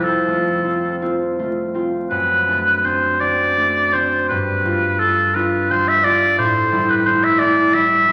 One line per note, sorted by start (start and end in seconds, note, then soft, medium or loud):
0.00 2.14 F2 soft
0.00 0.63 C4 soft
0.04 1.02 A4 soft
0.28 1.38 A3 soft
0.28 0.63 F4 soft
0.64 1.01 C4 soft
0.64 1.01 F4 soft
1.02 1.73 C4 soft
1.02 1.38 F4 soft
1.39 2.46 A3 soft
1.39 1.74 F4 soft
1.74 2.83 C4 soft
1.74 2.14 F4 soft
2.10 4.32 F#2 medium
2.10 2.86 B4 medium
2.47 3.56 A3 soft
2.47 2.83 D4 soft
2.84 3.20 C4 soft
2.84 3.21 D4 soft
2.84 3.22 C5 medium
3.20 3.93 C4 soft
3.20 3.57 D4 soft
3.20 3.95 D5 medium
3.57 4.32 A3 soft
3.57 3.93 D4 soft
3.93 4.33 C4 soft
3.93 4.99 D4 soft
3.93 4.28 C5 medium
4.29 6.41 G2 medium
4.29 5.01 B4 medium
4.65 5.69 G3 soft
4.65 5.00 F4 soft
4.99 5.34 D4 soft
4.99 5.35 F4 soft
4.99 5.37 A4 medium
5.35 6.03 D4 soft
5.35 5.69 F4 soft
5.35 5.72 B4 medium
5.70 6.71 G3 soft
5.70 6.04 F4 soft
5.70 5.90 C5 medium
5.88 6.05 E5 medium
6.04 6.41 D4 soft
6.04 6.41 F4 soft
6.04 6.38 D5 medium
6.38 8.12 A2 medium
6.38 6.91 C5 medium
6.72 7.72 G3 soft
6.72 7.05 E4 soft
6.89 7.07 B4 medium
7.05 7.38 A3 soft
7.05 7.39 E4 soft
7.05 7.25 C5 medium
7.24 7.40 E5 medium
7.39 8.06 A3 soft
7.39 7.73 E4 soft
7.39 7.75 D5 medium
7.73 8.12 G3 soft
7.73 8.07 E4 soft
7.73 8.12 E5 medium
8.08 8.12 A3 soft
8.08 8.12 E4 soft